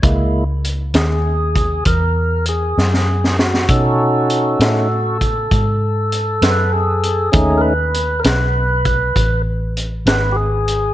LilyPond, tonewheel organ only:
\new Staff \with { instrumentName = "Tonewheel organ" } { \time 12/8 \key b \major \tempo 4. = 66 << { r4. gis'4. ais'4 gis'4. fis'8~ | fis'2~ fis'8 r2 b'8 gis'4~ | gis'8 <ais' b'>4 <ais' b'>2 r4 b'8 <g' gis'>4 | } \\ { <gis ais e'>8 r1 r4. | <cis' dis' a'>4. <a cis' dis'>8 r1 | <a cis' dis'>8 r1 r4. | } >> }